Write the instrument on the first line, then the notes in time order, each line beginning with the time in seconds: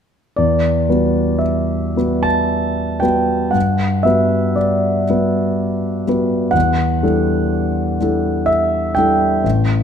grand piano
0.36 E2 D5
0.89 G3 B3 F#4 B4
1.39 E5
1.96 G3 B3 F#4 B4
2.23 A5
3.00 G3 B3 F#4 B4 G5
3.51 G2 F#5
4.03 G3 B3 F#4 B4 E5
4.56 D5
5.10 G3 B3 F#4 B4
6.07 G3 B3 F#4 B4
6.51 E2 F#5
7.03 G3 D4 E4 A4
8.01 G3 D4 E4 A4
8.46 E5
8.95 G3 D4 E4 A4 G5
9.44 A1